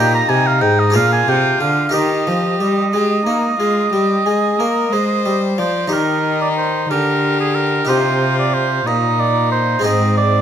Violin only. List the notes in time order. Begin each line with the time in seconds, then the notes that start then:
Already playing: D#4
0.94 F4
1.94 G4
2.94 G4
3.25 D#4
3.59 F4
3.92 G4
4.25 G#4
4.59 A#4
4.92 C5
5.58 D5
5.91 D#4
6.90 G4
7.89 F4
8.86 D#4
9.85 C4